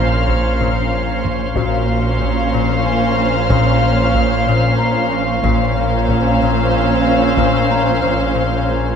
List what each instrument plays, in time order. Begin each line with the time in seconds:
Already playing: double bass section A#1, sub bass A#1, harp A#2 A#3, cello section A#2, synth texture C#4 C5 F5, viola section C#4, violin section C5 F5 A#5 C6 F6
0.28 harp A#2, taiko
0.60 harp A#2, taiko low-mid
0.92 harp A#3
1.24 harp A#3, taiko low-mid
1.55 sub bass A#1, double bass section A#1, harp A#2, cello section A#2, viola section C#4, synth texture C#4 C5 F5, celesta F#4 F5, violin section C5 F5 A#5 C6, taiko
1.89 harp A#3
2.21 harp A#2, taiko
2.54 harp A#2
2.85 harp A#3, celesta G#5, violin section F6
3.18 harp A#3
3.50 harp A#2, taiko
3.83 harp A#3
4.15 harp A#2, taiko
4.48 harp A#2
4.78 harp A#3, celesta A#5
5.12 harp A#3
5.43 double bass section A#1, sub bass A#1, harp A#2, cello section A#2, viola section C#4, synth texture C#4 C5, violin section C5 F5 A#5, taiko
5.47 synth texture F5
5.77 harp A#3
6.09 harp A#2, violin section E6, taiko
6.42 harp A#2
6.74 harp A#3
7.06 harp A#3
7.37 harp A#2, taiko
7.70 harp A#3, celesta A#5
8.02 harp A#2, taiko
8.35 harp A#2
8.66 harp A#3, celesta G#4 G#5